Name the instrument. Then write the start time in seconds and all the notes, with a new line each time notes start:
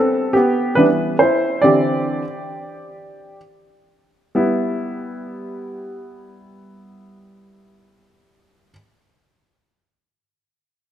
upright piano
Already playing: E3 G3 B3 C4 A4
0.33 B3 G4
0.75 E3 G3 B3 D4 B4
1.19 E4 C5
1.62 D3 E3 C4 G4 D5
4.35 G3 B3 E4